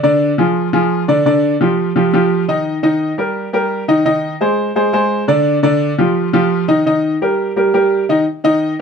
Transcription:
upright piano
0.03 D3 D4 D5
0.38 F3 F4 G#4
0.73 F3 F4 G#4
1.08 D3 D4 D5
1.25 D3 D4 D5
1.61 F3 F4 G4
1.96 F3 F4 G4
2.14 F3 F4 G4
2.48 D#3 D#4 D#5
2.83 D#3 D#4 D#5
3.18 G3 G4 A#4
3.53 G3 G4 A#4
3.88 D#3 D#4 D#5
4.05 D#3 D#4 D#5
4.41 G#3 G#4 C5
4.76 G#3 G#4 C5
4.93 G#3 G#4 C5
5.28 D3 D4 D5
5.63 D3 D4 D5
5.98 F3 F4 G4
6.33 F3 F4 G4
6.68 D#3 D#4 D#5
6.86 D#3 D#4 D#5
7.22 G3 G4 A#4
7.56 G3 G4 A#4
7.74 G3 G4 A#4
8.09 D#3 D#4 D#5
8.44 D#3 D#4 D#5

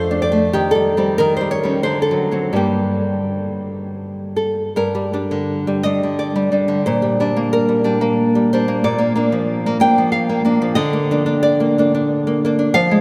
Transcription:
nylon-string guitar
Already playing: F2 F3 A3 A4 C5
0.11 D4
0.22 D5
0.32 A3
0.53 D#3 G4
0.71 G3 A4
0.97 G3 C4
1.18 D#3 A#4
1.37 C5
1.41 G3
1.51 C#5
1.63 G3 C#4
1.83 D3 C5
2.02 A4
2.11 F#3
2.32 F#3 C4
2.53 G2 G3 A#3 G4
4.36 A4
4.76 G2 A#4
4.95 G3
5.13 G3 D4
5.31 D3
5.67 G3
5.83 G3 D4 D#5
6.03 D3
6.19 D5
6.36 G3
6.52 G3 D4
6.68 D3
6.86 A#2 C5
7.02 G3
7.20 G3 D4
7.37 A#3
7.53 A#4
7.69 G3
7.84 G3 D4
8.01 A#3
8.35 G3
8.53 G3 D4 C5
8.68 A#3
8.84 A#2 D5
8.99 A#3
9.16 A#3 D4
9.32 F3
9.66 A#3
9.80 A#3 D4 G5
9.98 F3
10.12 F5
10.29 A#3
10.45 A#3 D4
10.62 F3
10.75 D3 D#5
10.93 A#3
11.11 A#3 D4
11.26 D4
11.43 D5
11.60 A#3
11.78 A#3 D4
11.95 D4
12.27 A#3
12.45 A#3 D4
12.59 D4
12.74 F3 F5
12.91 G#3

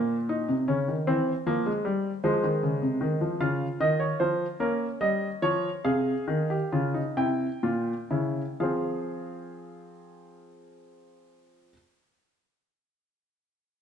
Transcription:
grand piano
Already playing: A#2 A#3 C5
0.29 D#4
0.49 C3
0.68 C#3 C#4
0.88 D#3
1.07 E3 C4
1.46 F3 A#3
1.66 G#3
1.85 G3
2.24 F3 G#3 C5
2.43 D#3
2.63 C#3
2.82 C3
3.01 D#3
3.21 F3
3.40 C#3 F4 F5
3.80 D#3 D#5
3.99 C#5
4.20 F3 C5
4.60 A#3 C#4 A#4
5.01 G3 D#5
5.42 F3 C#5
5.84 C3 G#4 F5
6.28 D#3
6.50 G4
6.72 C#3 F4
6.94 D#4
7.17 C3 E4 G5
7.63 A#2 F4
8.11 C#3 E4
8.60 F3 C4 F4 G#4 F5

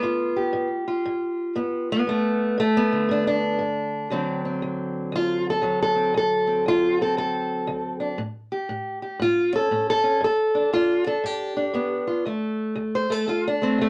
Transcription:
steel-string acoustic guitar
Already playing: B3
0.02 G2 F4
0.36 G4
0.53 G2
0.88 F4
1.05 G2
1.55 G2 B3
1.92 B3
2.07 G2 A3
2.58 G2 A3
2.77 B3
2.92 D3
3.09 G2 D4
3.27 D4
3.59 G2
4.10 D2 D3 F#3 C4
4.45 C4
4.62 D2
5.12 D2 F4
5.50 A4
5.62 D2 F#3
5.82 A4
5.95 C4
6.14 D2 A4
6.47 C4
6.66 D2 F4
7.01 C4 A4
7.17 D2 A4
7.67 D2
8.00 D4
8.18 A2
8.52 G4
8.69 A2
9.02 G4
9.20 A2 F4
9.53 C#4 A4
9.71 A2 C#4
9.90 A4
10.04 C#4
10.21 G2 A4
10.55 D4
10.73 G2 F4
11.07 D4 A4
11.24 G2 G4
11.57 D4
11.74 G2 B3
12.07 F4
12.25 D2 A3
12.75 D2
12.95 C5
13.10 A3 A4
13.28 D2 F4
13.47 D4
13.62 A3 C4
13.78 D2 A3

